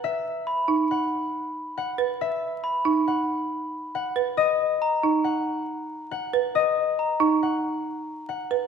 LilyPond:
<<
  \new Staff \with { instrumentName = "Glockenspiel" } { \time 5/4 \key b \major \tempo 4 = 138 r4 b''8 r2. r8 | r4 b''8 r2. r8 | r4 ais''8 r2. r8 | r4 ais''8 r2. r8 | }
  \new Staff \with { instrumentName = "Harp" } { \time 5/4 \key b \major <dis'' e'' fis''>2 fis''2 fis''4 | e''2 fis''2 fis''4 | dis''2 fis''2 fis''4 | dis''2 fis''2 fis''4 | }
  \new Staff \with { instrumentName = "Marimba" } { \time 5/4 \key b \major r4. dis'8 r2 r8 b'8 | r4. dis'8 r2 r8 b'8 | r4. dis'8 r2 r8 b'8 | r4. dis'8 r2 r8 b'8 | }
>>